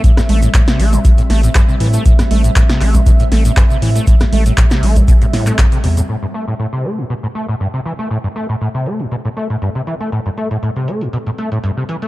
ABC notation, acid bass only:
X:1
M:4/4
L:1/16
Q:"Swing 16ths" 1/4=119
K:Am
V:1 name="Acid bass" clef=bass
A,, G,, A, A,, A,, C, A, A,, B,, A,, A, A,, G,, C, E, A, | A,, G,, A, A,, A,, C, A, A,, B,, A,, A, A,, G,, C, E, A, | A,, G,, A, A,, A,, C, A, A,, B,, A,, A,, A, G,, C, C, A,, | A,, G,, A, A,, A,, C, A, A,, B,, A,, A, A,, G,, C, E, A, |
A,, G,, A, A,, A,, C, A, A,, B,, A,, A, A,, G,, C, E, A, | A,, G,, A, A,, A,, C, A, A,, B,, A,, A, A,, G,, C, E, A, |]